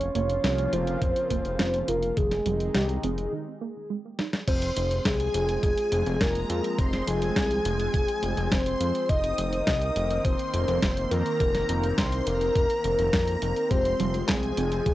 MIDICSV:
0, 0, Header, 1, 8, 480
1, 0, Start_track
1, 0, Key_signature, -4, "minor"
1, 0, Tempo, 576923
1, 1806, Time_signature, 4, 2, 24, 8
1, 12430, End_track
2, 0, Start_track
2, 0, Title_t, "String machine"
2, 0, Program_c, 0, 50
2, 3725, Note_on_c, 0, 84, 112
2, 4172, Note_off_c, 0, 84, 0
2, 4205, Note_on_c, 0, 80, 100
2, 4652, Note_off_c, 0, 80, 0
2, 4684, Note_on_c, 0, 80, 100
2, 5132, Note_off_c, 0, 80, 0
2, 5164, Note_on_c, 0, 82, 104
2, 5612, Note_off_c, 0, 82, 0
2, 5646, Note_on_c, 0, 84, 110
2, 5869, Note_off_c, 0, 84, 0
2, 5883, Note_on_c, 0, 80, 120
2, 7052, Note_off_c, 0, 80, 0
2, 7085, Note_on_c, 0, 84, 112
2, 7532, Note_off_c, 0, 84, 0
2, 7563, Note_on_c, 0, 87, 120
2, 8011, Note_off_c, 0, 87, 0
2, 8044, Note_on_c, 0, 87, 115
2, 8492, Note_off_c, 0, 87, 0
2, 8523, Note_on_c, 0, 84, 116
2, 9211, Note_off_c, 0, 84, 0
2, 9243, Note_on_c, 0, 82, 96
2, 9468, Note_off_c, 0, 82, 0
2, 9485, Note_on_c, 0, 82, 112
2, 9932, Note_off_c, 0, 82, 0
2, 9965, Note_on_c, 0, 84, 104
2, 10189, Note_off_c, 0, 84, 0
2, 10202, Note_on_c, 0, 82, 112
2, 10891, Note_off_c, 0, 82, 0
2, 10924, Note_on_c, 0, 82, 106
2, 11372, Note_off_c, 0, 82, 0
2, 11403, Note_on_c, 0, 84, 107
2, 11852, Note_off_c, 0, 84, 0
2, 11885, Note_on_c, 0, 80, 92
2, 12332, Note_off_c, 0, 80, 0
2, 12365, Note_on_c, 0, 80, 96
2, 12430, Note_off_c, 0, 80, 0
2, 12430, End_track
3, 0, Start_track
3, 0, Title_t, "Soft synth lead"
3, 0, Program_c, 1, 80
3, 0, Note_on_c, 1, 73, 111
3, 110, Note_off_c, 1, 73, 0
3, 126, Note_on_c, 1, 73, 114
3, 608, Note_on_c, 1, 72, 119
3, 621, Note_off_c, 1, 73, 0
3, 1569, Note_on_c, 1, 70, 98
3, 1581, Note_off_c, 1, 72, 0
3, 1808, Note_on_c, 1, 68, 102
3, 1820, Note_off_c, 1, 70, 0
3, 2282, Note_off_c, 1, 68, 0
3, 2287, Note_on_c, 1, 67, 86
3, 2527, Note_on_c, 1, 68, 89
3, 2540, Note_off_c, 1, 67, 0
3, 2767, Note_off_c, 1, 68, 0
3, 3723, Note_on_c, 1, 72, 112
3, 4204, Note_on_c, 1, 68, 95
3, 4217, Note_off_c, 1, 72, 0
3, 4680, Note_off_c, 1, 68, 0
3, 4685, Note_on_c, 1, 68, 98
3, 5165, Note_on_c, 1, 70, 102
3, 5177, Note_off_c, 1, 68, 0
3, 5644, Note_on_c, 1, 72, 112
3, 5656, Note_off_c, 1, 70, 0
3, 5883, Note_on_c, 1, 68, 108
3, 5896, Note_off_c, 1, 72, 0
3, 7085, Note_on_c, 1, 72, 112
3, 7097, Note_off_c, 1, 68, 0
3, 7563, Note_on_c, 1, 75, 123
3, 7576, Note_off_c, 1, 72, 0
3, 8039, Note_off_c, 1, 75, 0
3, 8044, Note_on_c, 1, 75, 116
3, 8523, Note_on_c, 1, 72, 111
3, 8536, Note_off_c, 1, 75, 0
3, 9244, Note_on_c, 1, 70, 97
3, 9256, Note_off_c, 1, 72, 0
3, 9477, Note_off_c, 1, 70, 0
3, 9482, Note_on_c, 1, 70, 107
3, 9931, Note_off_c, 1, 70, 0
3, 9963, Note_on_c, 1, 72, 98
3, 10203, Note_on_c, 1, 70, 112
3, 10215, Note_off_c, 1, 72, 0
3, 10917, Note_off_c, 1, 70, 0
3, 10922, Note_on_c, 1, 70, 102
3, 11403, Note_on_c, 1, 72, 114
3, 11415, Note_off_c, 1, 70, 0
3, 11885, Note_on_c, 1, 68, 96
3, 11897, Note_off_c, 1, 72, 0
3, 12361, Note_off_c, 1, 68, 0
3, 12366, Note_on_c, 1, 68, 91
3, 12430, Note_off_c, 1, 68, 0
3, 12430, End_track
4, 0, Start_track
4, 0, Title_t, "FM electric piano"
4, 0, Program_c, 2, 5
4, 11407, Note_on_c, 2, 56, 86
4, 11407, Note_on_c, 2, 60, 81
4, 11407, Note_on_c, 2, 65, 77
4, 11407, Note_on_c, 2, 67, 94
4, 11738, Note_off_c, 2, 56, 0
4, 11738, Note_off_c, 2, 60, 0
4, 11738, Note_off_c, 2, 65, 0
4, 11738, Note_off_c, 2, 67, 0
4, 11766, Note_on_c, 2, 56, 90
4, 11766, Note_on_c, 2, 67, 100
4, 11767, Note_on_c, 2, 60, 81
4, 11767, Note_on_c, 2, 65, 83
4, 11881, Note_off_c, 2, 56, 0
4, 11881, Note_off_c, 2, 67, 0
4, 11882, Note_off_c, 2, 60, 0
4, 11882, Note_off_c, 2, 65, 0
4, 12430, End_track
5, 0, Start_track
5, 0, Title_t, "Analog synth pad"
5, 0, Program_c, 3, 89
5, 0, Note_on_c, 3, 49, 79
5, 0, Note_on_c, 3, 53, 76
5, 0, Note_on_c, 3, 58, 74
5, 0, Note_on_c, 3, 65, 86
5, 1787, Note_off_c, 3, 49, 0
5, 1787, Note_off_c, 3, 53, 0
5, 1787, Note_off_c, 3, 58, 0
5, 1788, Note_off_c, 3, 65, 0
5, 1805, Note_on_c, 3, 48, 78
5, 1805, Note_on_c, 3, 51, 73
5, 1805, Note_on_c, 3, 56, 69
5, 1805, Note_on_c, 3, 63, 89
5, 2756, Note_off_c, 3, 48, 0
5, 2756, Note_off_c, 3, 51, 0
5, 2756, Note_off_c, 3, 56, 0
5, 2756, Note_off_c, 3, 63, 0
5, 3726, Note_on_c, 3, 53, 77
5, 3726, Note_on_c, 3, 56, 75
5, 3726, Note_on_c, 3, 60, 74
5, 7533, Note_off_c, 3, 53, 0
5, 7533, Note_off_c, 3, 56, 0
5, 7568, Note_on_c, 3, 58, 75
5, 7569, Note_on_c, 3, 51, 83
5, 11374, Note_off_c, 3, 51, 0
5, 11374, Note_off_c, 3, 58, 0
5, 11407, Note_on_c, 3, 53, 78
5, 11408, Note_on_c, 3, 56, 76
5, 12430, Note_off_c, 3, 53, 0
5, 12430, Note_off_c, 3, 56, 0
5, 12430, Note_off_c, 3, 60, 0
5, 12430, End_track
6, 0, Start_track
6, 0, Title_t, "Synth arpeggio sound"
6, 0, Program_c, 4, 84
6, 0, Note_on_c, 4, 53, 85
6, 95, Note_off_c, 4, 53, 0
6, 125, Note_on_c, 4, 58, 99
6, 334, Note_off_c, 4, 58, 0
6, 365, Note_on_c, 4, 61, 72
6, 594, Note_off_c, 4, 61, 0
6, 605, Note_on_c, 4, 65, 79
6, 814, Note_off_c, 4, 65, 0
6, 846, Note_on_c, 4, 53, 83
6, 1055, Note_off_c, 4, 53, 0
6, 1086, Note_on_c, 4, 58, 101
6, 1295, Note_off_c, 4, 58, 0
6, 1326, Note_on_c, 4, 61, 77
6, 1554, Note_off_c, 4, 61, 0
6, 1565, Note_on_c, 4, 65, 75
6, 1775, Note_off_c, 4, 65, 0
6, 1806, Note_on_c, 4, 51, 84
6, 2015, Note_off_c, 4, 51, 0
6, 2045, Note_on_c, 4, 55, 98
6, 2254, Note_off_c, 4, 55, 0
6, 2285, Note_on_c, 4, 56, 73
6, 2514, Note_off_c, 4, 56, 0
6, 2526, Note_on_c, 4, 60, 77
6, 2735, Note_off_c, 4, 60, 0
6, 2765, Note_on_c, 4, 51, 84
6, 2974, Note_off_c, 4, 51, 0
6, 3005, Note_on_c, 4, 58, 78
6, 3234, Note_off_c, 4, 58, 0
6, 3245, Note_on_c, 4, 56, 73
6, 3474, Note_off_c, 4, 56, 0
6, 3486, Note_on_c, 4, 63, 74
6, 3611, Note_off_c, 4, 63, 0
6, 11406, Note_on_c, 4, 53, 85
6, 11615, Note_off_c, 4, 53, 0
6, 11646, Note_on_c, 4, 55, 99
6, 11855, Note_off_c, 4, 55, 0
6, 11886, Note_on_c, 4, 56, 76
6, 12114, Note_off_c, 4, 56, 0
6, 12126, Note_on_c, 4, 60, 80
6, 12335, Note_off_c, 4, 60, 0
6, 12367, Note_on_c, 4, 53, 83
6, 12430, Note_off_c, 4, 53, 0
6, 12430, End_track
7, 0, Start_track
7, 0, Title_t, "Analog synth bass"
7, 0, Program_c, 5, 38
7, 126, Note_on_c, 5, 29, 82
7, 323, Note_off_c, 5, 29, 0
7, 366, Note_on_c, 5, 36, 85
7, 563, Note_off_c, 5, 36, 0
7, 606, Note_on_c, 5, 29, 99
7, 803, Note_off_c, 5, 29, 0
7, 845, Note_on_c, 5, 29, 83
7, 944, Note_off_c, 5, 29, 0
7, 1085, Note_on_c, 5, 29, 94
7, 1184, Note_off_c, 5, 29, 0
7, 1206, Note_on_c, 5, 29, 85
7, 1304, Note_off_c, 5, 29, 0
7, 1325, Note_on_c, 5, 29, 83
7, 1522, Note_off_c, 5, 29, 0
7, 1566, Note_on_c, 5, 29, 80
7, 1763, Note_off_c, 5, 29, 0
7, 1805, Note_on_c, 5, 29, 97
7, 2002, Note_off_c, 5, 29, 0
7, 2045, Note_on_c, 5, 29, 87
7, 2243, Note_off_c, 5, 29, 0
7, 2286, Note_on_c, 5, 36, 85
7, 2483, Note_off_c, 5, 36, 0
7, 2526, Note_on_c, 5, 29, 96
7, 2723, Note_off_c, 5, 29, 0
7, 3725, Note_on_c, 5, 29, 94
7, 3922, Note_off_c, 5, 29, 0
7, 3966, Note_on_c, 5, 29, 82
7, 4163, Note_off_c, 5, 29, 0
7, 4204, Note_on_c, 5, 36, 87
7, 4402, Note_off_c, 5, 36, 0
7, 4445, Note_on_c, 5, 29, 96
7, 4642, Note_off_c, 5, 29, 0
7, 4685, Note_on_c, 5, 29, 87
7, 4784, Note_off_c, 5, 29, 0
7, 4925, Note_on_c, 5, 29, 97
7, 5024, Note_off_c, 5, 29, 0
7, 5045, Note_on_c, 5, 29, 107
7, 5144, Note_off_c, 5, 29, 0
7, 5165, Note_on_c, 5, 29, 85
7, 5362, Note_off_c, 5, 29, 0
7, 5404, Note_on_c, 5, 41, 89
7, 5504, Note_off_c, 5, 41, 0
7, 5645, Note_on_c, 5, 29, 100
7, 5842, Note_off_c, 5, 29, 0
7, 5885, Note_on_c, 5, 29, 88
7, 6082, Note_off_c, 5, 29, 0
7, 6125, Note_on_c, 5, 36, 87
7, 6322, Note_off_c, 5, 36, 0
7, 6366, Note_on_c, 5, 29, 102
7, 6563, Note_off_c, 5, 29, 0
7, 6605, Note_on_c, 5, 29, 88
7, 6704, Note_off_c, 5, 29, 0
7, 6845, Note_on_c, 5, 29, 94
7, 6944, Note_off_c, 5, 29, 0
7, 6965, Note_on_c, 5, 29, 107
7, 7064, Note_off_c, 5, 29, 0
7, 7085, Note_on_c, 5, 29, 86
7, 7282, Note_off_c, 5, 29, 0
7, 7325, Note_on_c, 5, 41, 83
7, 7424, Note_off_c, 5, 41, 0
7, 7565, Note_on_c, 5, 29, 101
7, 7762, Note_off_c, 5, 29, 0
7, 7804, Note_on_c, 5, 29, 86
7, 8002, Note_off_c, 5, 29, 0
7, 8045, Note_on_c, 5, 36, 92
7, 8243, Note_off_c, 5, 36, 0
7, 8286, Note_on_c, 5, 29, 98
7, 8483, Note_off_c, 5, 29, 0
7, 8525, Note_on_c, 5, 29, 91
7, 8624, Note_off_c, 5, 29, 0
7, 8766, Note_on_c, 5, 29, 97
7, 8865, Note_off_c, 5, 29, 0
7, 8885, Note_on_c, 5, 29, 106
7, 8984, Note_off_c, 5, 29, 0
7, 9005, Note_on_c, 5, 29, 84
7, 9203, Note_off_c, 5, 29, 0
7, 9245, Note_on_c, 5, 41, 86
7, 9344, Note_off_c, 5, 41, 0
7, 9486, Note_on_c, 5, 29, 96
7, 9683, Note_off_c, 5, 29, 0
7, 9726, Note_on_c, 5, 29, 88
7, 9923, Note_off_c, 5, 29, 0
7, 9965, Note_on_c, 5, 36, 91
7, 10163, Note_off_c, 5, 36, 0
7, 10206, Note_on_c, 5, 29, 99
7, 10403, Note_off_c, 5, 29, 0
7, 10445, Note_on_c, 5, 29, 89
7, 10544, Note_off_c, 5, 29, 0
7, 10686, Note_on_c, 5, 29, 98
7, 10784, Note_off_c, 5, 29, 0
7, 10806, Note_on_c, 5, 29, 93
7, 10904, Note_off_c, 5, 29, 0
7, 10925, Note_on_c, 5, 41, 86
7, 11123, Note_off_c, 5, 41, 0
7, 11166, Note_on_c, 5, 29, 87
7, 11265, Note_off_c, 5, 29, 0
7, 11405, Note_on_c, 5, 29, 99
7, 11602, Note_off_c, 5, 29, 0
7, 11647, Note_on_c, 5, 29, 89
7, 11844, Note_off_c, 5, 29, 0
7, 11885, Note_on_c, 5, 36, 91
7, 12082, Note_off_c, 5, 36, 0
7, 12127, Note_on_c, 5, 29, 95
7, 12323, Note_off_c, 5, 29, 0
7, 12366, Note_on_c, 5, 29, 89
7, 12430, Note_off_c, 5, 29, 0
7, 12430, End_track
8, 0, Start_track
8, 0, Title_t, "Drums"
8, 6, Note_on_c, 9, 42, 37
8, 89, Note_off_c, 9, 42, 0
8, 126, Note_on_c, 9, 42, 86
8, 210, Note_off_c, 9, 42, 0
8, 246, Note_on_c, 9, 42, 38
8, 329, Note_off_c, 9, 42, 0
8, 366, Note_on_c, 9, 38, 107
8, 366, Note_on_c, 9, 42, 61
8, 450, Note_off_c, 9, 38, 0
8, 450, Note_off_c, 9, 42, 0
8, 486, Note_on_c, 9, 42, 35
8, 569, Note_off_c, 9, 42, 0
8, 605, Note_on_c, 9, 42, 87
8, 689, Note_off_c, 9, 42, 0
8, 726, Note_on_c, 9, 42, 35
8, 809, Note_off_c, 9, 42, 0
8, 845, Note_on_c, 9, 36, 113
8, 845, Note_on_c, 9, 42, 62
8, 928, Note_off_c, 9, 36, 0
8, 929, Note_off_c, 9, 42, 0
8, 966, Note_on_c, 9, 42, 38
8, 1049, Note_off_c, 9, 42, 0
8, 1085, Note_on_c, 9, 36, 61
8, 1085, Note_on_c, 9, 42, 82
8, 1168, Note_off_c, 9, 36, 0
8, 1168, Note_off_c, 9, 42, 0
8, 1205, Note_on_c, 9, 42, 36
8, 1289, Note_off_c, 9, 42, 0
8, 1325, Note_on_c, 9, 38, 106
8, 1325, Note_on_c, 9, 42, 62
8, 1408, Note_off_c, 9, 38, 0
8, 1408, Note_off_c, 9, 42, 0
8, 1445, Note_on_c, 9, 42, 37
8, 1529, Note_off_c, 9, 42, 0
8, 1565, Note_on_c, 9, 42, 91
8, 1648, Note_off_c, 9, 42, 0
8, 1685, Note_on_c, 9, 42, 36
8, 1768, Note_off_c, 9, 42, 0
8, 1804, Note_on_c, 9, 42, 63
8, 1805, Note_on_c, 9, 36, 113
8, 1888, Note_off_c, 9, 36, 0
8, 1888, Note_off_c, 9, 42, 0
8, 1925, Note_on_c, 9, 38, 35
8, 1925, Note_on_c, 9, 42, 40
8, 2008, Note_off_c, 9, 38, 0
8, 2008, Note_off_c, 9, 42, 0
8, 2045, Note_on_c, 9, 42, 91
8, 2128, Note_off_c, 9, 42, 0
8, 2165, Note_on_c, 9, 42, 41
8, 2248, Note_off_c, 9, 42, 0
8, 2284, Note_on_c, 9, 38, 106
8, 2284, Note_on_c, 9, 42, 65
8, 2367, Note_off_c, 9, 38, 0
8, 2367, Note_off_c, 9, 42, 0
8, 2404, Note_on_c, 9, 42, 37
8, 2488, Note_off_c, 9, 42, 0
8, 2525, Note_on_c, 9, 42, 91
8, 2608, Note_off_c, 9, 42, 0
8, 2645, Note_on_c, 9, 42, 37
8, 2728, Note_off_c, 9, 42, 0
8, 3485, Note_on_c, 9, 38, 59
8, 3568, Note_off_c, 9, 38, 0
8, 3605, Note_on_c, 9, 38, 66
8, 3688, Note_off_c, 9, 38, 0
8, 3725, Note_on_c, 9, 36, 117
8, 3725, Note_on_c, 9, 42, 68
8, 3725, Note_on_c, 9, 49, 99
8, 3808, Note_off_c, 9, 36, 0
8, 3808, Note_off_c, 9, 42, 0
8, 3808, Note_off_c, 9, 49, 0
8, 3845, Note_on_c, 9, 42, 41
8, 3928, Note_off_c, 9, 42, 0
8, 3965, Note_on_c, 9, 42, 100
8, 4048, Note_off_c, 9, 42, 0
8, 4086, Note_on_c, 9, 42, 42
8, 4169, Note_off_c, 9, 42, 0
8, 4205, Note_on_c, 9, 36, 120
8, 4205, Note_on_c, 9, 38, 118
8, 4205, Note_on_c, 9, 42, 69
8, 4288, Note_off_c, 9, 36, 0
8, 4288, Note_off_c, 9, 38, 0
8, 4288, Note_off_c, 9, 42, 0
8, 4326, Note_on_c, 9, 42, 41
8, 4409, Note_off_c, 9, 42, 0
8, 4446, Note_on_c, 9, 42, 99
8, 4529, Note_off_c, 9, 42, 0
8, 4566, Note_on_c, 9, 42, 41
8, 4649, Note_off_c, 9, 42, 0
8, 4685, Note_on_c, 9, 36, 116
8, 4685, Note_on_c, 9, 42, 69
8, 4768, Note_off_c, 9, 36, 0
8, 4769, Note_off_c, 9, 42, 0
8, 4806, Note_on_c, 9, 42, 41
8, 4889, Note_off_c, 9, 42, 0
8, 4925, Note_on_c, 9, 42, 92
8, 5008, Note_off_c, 9, 42, 0
8, 5046, Note_on_c, 9, 42, 41
8, 5129, Note_off_c, 9, 42, 0
8, 5165, Note_on_c, 9, 36, 119
8, 5166, Note_on_c, 9, 38, 118
8, 5166, Note_on_c, 9, 42, 66
8, 5248, Note_off_c, 9, 36, 0
8, 5249, Note_off_c, 9, 38, 0
8, 5249, Note_off_c, 9, 42, 0
8, 5286, Note_on_c, 9, 42, 40
8, 5369, Note_off_c, 9, 42, 0
8, 5406, Note_on_c, 9, 42, 96
8, 5489, Note_off_c, 9, 42, 0
8, 5526, Note_on_c, 9, 42, 41
8, 5610, Note_off_c, 9, 42, 0
8, 5645, Note_on_c, 9, 36, 125
8, 5646, Note_on_c, 9, 42, 67
8, 5728, Note_off_c, 9, 36, 0
8, 5729, Note_off_c, 9, 42, 0
8, 5766, Note_on_c, 9, 38, 40
8, 5766, Note_on_c, 9, 42, 43
8, 5849, Note_off_c, 9, 38, 0
8, 5849, Note_off_c, 9, 42, 0
8, 5886, Note_on_c, 9, 42, 97
8, 5969, Note_off_c, 9, 42, 0
8, 6006, Note_on_c, 9, 42, 42
8, 6090, Note_off_c, 9, 42, 0
8, 6125, Note_on_c, 9, 36, 117
8, 6126, Note_on_c, 9, 38, 121
8, 6126, Note_on_c, 9, 42, 71
8, 6209, Note_off_c, 9, 36, 0
8, 6209, Note_off_c, 9, 38, 0
8, 6209, Note_off_c, 9, 42, 0
8, 6246, Note_on_c, 9, 42, 40
8, 6329, Note_off_c, 9, 42, 0
8, 6366, Note_on_c, 9, 42, 101
8, 6450, Note_off_c, 9, 42, 0
8, 6486, Note_on_c, 9, 42, 41
8, 6570, Note_off_c, 9, 42, 0
8, 6605, Note_on_c, 9, 36, 124
8, 6606, Note_on_c, 9, 42, 72
8, 6689, Note_off_c, 9, 36, 0
8, 6689, Note_off_c, 9, 42, 0
8, 6726, Note_on_c, 9, 42, 40
8, 6809, Note_off_c, 9, 42, 0
8, 6845, Note_on_c, 9, 42, 92
8, 6928, Note_off_c, 9, 42, 0
8, 6966, Note_on_c, 9, 42, 42
8, 7049, Note_off_c, 9, 42, 0
8, 7085, Note_on_c, 9, 36, 126
8, 7086, Note_on_c, 9, 38, 123
8, 7086, Note_on_c, 9, 42, 65
8, 7169, Note_off_c, 9, 36, 0
8, 7169, Note_off_c, 9, 38, 0
8, 7169, Note_off_c, 9, 42, 0
8, 7206, Note_on_c, 9, 42, 40
8, 7289, Note_off_c, 9, 42, 0
8, 7326, Note_on_c, 9, 42, 96
8, 7409, Note_off_c, 9, 42, 0
8, 7445, Note_on_c, 9, 42, 39
8, 7529, Note_off_c, 9, 42, 0
8, 7565, Note_on_c, 9, 36, 122
8, 7565, Note_on_c, 9, 42, 66
8, 7648, Note_off_c, 9, 36, 0
8, 7648, Note_off_c, 9, 42, 0
8, 7685, Note_on_c, 9, 42, 42
8, 7768, Note_off_c, 9, 42, 0
8, 7805, Note_on_c, 9, 42, 98
8, 7888, Note_off_c, 9, 42, 0
8, 7925, Note_on_c, 9, 42, 40
8, 8008, Note_off_c, 9, 42, 0
8, 8045, Note_on_c, 9, 36, 117
8, 8045, Note_on_c, 9, 38, 127
8, 8045, Note_on_c, 9, 42, 67
8, 8128, Note_off_c, 9, 36, 0
8, 8128, Note_off_c, 9, 38, 0
8, 8128, Note_off_c, 9, 42, 0
8, 8165, Note_on_c, 9, 42, 38
8, 8249, Note_off_c, 9, 42, 0
8, 8286, Note_on_c, 9, 42, 96
8, 8369, Note_off_c, 9, 42, 0
8, 8407, Note_on_c, 9, 42, 41
8, 8490, Note_off_c, 9, 42, 0
8, 8525, Note_on_c, 9, 36, 127
8, 8526, Note_on_c, 9, 42, 70
8, 8609, Note_off_c, 9, 36, 0
8, 8610, Note_off_c, 9, 42, 0
8, 8646, Note_on_c, 9, 42, 41
8, 8730, Note_off_c, 9, 42, 0
8, 8766, Note_on_c, 9, 42, 90
8, 8849, Note_off_c, 9, 42, 0
8, 8887, Note_on_c, 9, 42, 39
8, 8970, Note_off_c, 9, 42, 0
8, 9006, Note_on_c, 9, 36, 127
8, 9006, Note_on_c, 9, 38, 123
8, 9006, Note_on_c, 9, 42, 66
8, 9089, Note_off_c, 9, 36, 0
8, 9090, Note_off_c, 9, 38, 0
8, 9090, Note_off_c, 9, 42, 0
8, 9127, Note_on_c, 9, 42, 41
8, 9210, Note_off_c, 9, 42, 0
8, 9246, Note_on_c, 9, 42, 98
8, 9330, Note_off_c, 9, 42, 0
8, 9366, Note_on_c, 9, 42, 37
8, 9449, Note_off_c, 9, 42, 0
8, 9486, Note_on_c, 9, 36, 121
8, 9486, Note_on_c, 9, 42, 63
8, 9569, Note_off_c, 9, 36, 0
8, 9569, Note_off_c, 9, 42, 0
8, 9606, Note_on_c, 9, 38, 39
8, 9606, Note_on_c, 9, 42, 39
8, 9689, Note_off_c, 9, 38, 0
8, 9689, Note_off_c, 9, 42, 0
8, 9725, Note_on_c, 9, 42, 94
8, 9809, Note_off_c, 9, 42, 0
8, 9846, Note_on_c, 9, 42, 40
8, 9930, Note_off_c, 9, 42, 0
8, 9966, Note_on_c, 9, 36, 116
8, 9966, Note_on_c, 9, 38, 123
8, 9966, Note_on_c, 9, 42, 67
8, 10049, Note_off_c, 9, 36, 0
8, 10049, Note_off_c, 9, 38, 0
8, 10049, Note_off_c, 9, 42, 0
8, 10086, Note_on_c, 9, 42, 38
8, 10169, Note_off_c, 9, 42, 0
8, 10206, Note_on_c, 9, 42, 91
8, 10289, Note_off_c, 9, 42, 0
8, 10326, Note_on_c, 9, 42, 38
8, 10409, Note_off_c, 9, 42, 0
8, 10445, Note_on_c, 9, 36, 127
8, 10446, Note_on_c, 9, 42, 69
8, 10529, Note_off_c, 9, 36, 0
8, 10529, Note_off_c, 9, 42, 0
8, 10565, Note_on_c, 9, 42, 38
8, 10649, Note_off_c, 9, 42, 0
8, 10685, Note_on_c, 9, 42, 83
8, 10768, Note_off_c, 9, 42, 0
8, 10806, Note_on_c, 9, 42, 39
8, 10889, Note_off_c, 9, 42, 0
8, 10925, Note_on_c, 9, 36, 127
8, 10926, Note_on_c, 9, 38, 123
8, 10926, Note_on_c, 9, 42, 63
8, 11009, Note_off_c, 9, 36, 0
8, 11009, Note_off_c, 9, 38, 0
8, 11009, Note_off_c, 9, 42, 0
8, 11046, Note_on_c, 9, 42, 40
8, 11129, Note_off_c, 9, 42, 0
8, 11166, Note_on_c, 9, 42, 95
8, 11249, Note_off_c, 9, 42, 0
8, 11286, Note_on_c, 9, 42, 38
8, 11369, Note_off_c, 9, 42, 0
8, 11405, Note_on_c, 9, 36, 122
8, 11405, Note_on_c, 9, 42, 61
8, 11489, Note_off_c, 9, 36, 0
8, 11489, Note_off_c, 9, 42, 0
8, 11526, Note_on_c, 9, 42, 39
8, 11609, Note_off_c, 9, 42, 0
8, 11646, Note_on_c, 9, 42, 86
8, 11729, Note_off_c, 9, 42, 0
8, 11765, Note_on_c, 9, 42, 39
8, 11849, Note_off_c, 9, 42, 0
8, 11885, Note_on_c, 9, 36, 112
8, 11885, Note_on_c, 9, 38, 118
8, 11885, Note_on_c, 9, 39, 91
8, 11885, Note_on_c, 9, 42, 64
8, 11968, Note_off_c, 9, 38, 0
8, 11968, Note_off_c, 9, 39, 0
8, 11968, Note_off_c, 9, 42, 0
8, 11969, Note_off_c, 9, 36, 0
8, 12005, Note_on_c, 9, 42, 37
8, 12088, Note_off_c, 9, 42, 0
8, 12125, Note_on_c, 9, 42, 89
8, 12208, Note_off_c, 9, 42, 0
8, 12246, Note_on_c, 9, 42, 36
8, 12329, Note_off_c, 9, 42, 0
8, 12365, Note_on_c, 9, 36, 120
8, 12366, Note_on_c, 9, 42, 65
8, 12430, Note_off_c, 9, 36, 0
8, 12430, Note_off_c, 9, 42, 0
8, 12430, End_track
0, 0, End_of_file